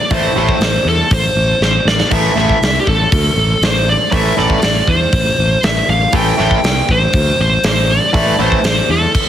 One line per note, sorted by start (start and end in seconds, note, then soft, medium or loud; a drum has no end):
0.00 0.12 D5 medium
0.11 0.27 A1 medium
0.11 0.31 A2 medium
0.11 0.31 E3 loud
0.11 0.31 A3 medium
0.11 0.38 C5 medium
0.11 kick loud
0.11 open hi-hat medium
0.36 0.52 A1 medium
0.36 0.56 A2 medium
0.36 0.56 E3 medium
0.36 0.57 A3 loud
0.36 0.88 C5 medium
0.49 kick medium
0.59 0.77 A1 medium
0.59 snare loud
0.59 open hi-hat soft
0.85 1.02 E2 medium
0.85 1.13 A4 medium
1.11 1.28 A1 medium
1.11 1.62 C5 medium
1.11 kick loud
1.11 open hi-hat medium
1.35 1.52 A1 medium
1.60 1.77 A1 medium
1.60 1.88 C5 medium
1.60 snare medium
1.85 2.02 A1 medium
1.85 2.10 D5 medium
1.85 snare medium
2.00 snare medium
2.11 2.28 A1 medium
2.11 2.32 A2 medium
2.11 2.32 E3 loud
2.11 2.32 A3 medium
2.11 2.35 E5 medium
2.11 kick loud
2.11 open hi-hat medium
2.11 splash medium
2.36 2.53 A1 medium
2.36 2.56 A2 medium
2.36 2.57 E3 medium
2.36 2.57 A3 medium
2.36 2.78 E5 medium
2.36 snare soft
2.49 kick medium
2.60 2.77 C2 medium
2.60 snare loud
2.60 open hi-hat soft
2.80 2.87 G4 medium
2.87 3.04 A1 medium
2.87 3.65 A4 medium
2.87 kick medium
3.12 3.29 D2 medium
3.12 kick loud
3.12 open hi-hat medium
3.36 3.53 A1 medium
3.61 3.95 A1 medium
3.61 3.87 C5 medium
3.61 snare loud
3.61 open hi-hat medium
3.89 4.12 D5 medium
4.12 4.29 A1 medium
4.12 4.32 A2 medium
4.12 4.33 E3 medium
4.12 4.33 A3 loud
4.12 4.39 E5 loud
4.12 kick loud
4.12 open hi-hat medium
4.37 4.55 A1 medium
4.37 4.57 A2 medium
4.37 4.58 E3 loud
4.37 4.58 A3 loud
4.37 4.90 D5 medium
4.37 snare soft
4.50 kick medium
4.62 4.80 A1 medium
4.62 snare loud
4.62 open hi-hat medium
4.87 5.04 E2 medium
4.87 5.60 C5 medium
4.87 kick medium
5.13 5.29 A1 medium
5.13 kick loud
5.13 open hi-hat soft
5.38 5.55 A1 medium
5.63 5.80 A1 medium
5.63 5.87 E5 medium
5.63 snare loud
5.63 open hi-hat medium
5.88 6.05 A1 medium
5.88 6.12 F5 medium
6.13 6.30 A1 medium
6.13 6.33 A2 medium
6.13 6.34 E3 loud
6.13 6.34 A3 loud
6.13 6.40 G5 loud
6.13 kick loud
6.13 open hi-hat medium
6.38 6.55 A1 medium
6.38 6.58 A2 medium
6.38 6.59 E3 medium
6.38 6.59 A3 medium
6.38 snare soft
6.43 6.92 G5 loud
6.51 kick medium
6.64 6.80 C2 medium
6.64 snare loud
6.64 open hi-hat soft
6.89 7.05 A1 medium
6.89 7.40 C5 medium
6.89 kick medium
7.13 7.30 D2 medium
7.13 kick loud
7.13 open hi-hat medium
7.39 7.55 A1 medium
7.39 7.65 C5 medium
7.64 7.97 A1 medium
7.64 7.89 C5 medium
7.64 snare loud
7.64 open hi-hat medium
7.91 8.37 D5 loud
8.13 8.30 A1 medium
8.13 8.34 A2 medium
8.13 8.34 E3 loud
8.13 8.34 A3 loud
8.13 kick loud
8.13 open hi-hat medium
8.38 8.55 A1 medium
8.38 8.59 A2 medium
8.38 8.60 E3 loud
8.38 8.60 A3 medium
8.38 8.64 C5 medium
8.52 kick medium
8.63 8.80 A1 medium
8.63 8.91 C5 medium
8.63 snare loud
8.63 open hi-hat medium
8.89 9.05 E2 medium
8.89 9.29 A4 medium
9.15 kick loud
9.15 crash medium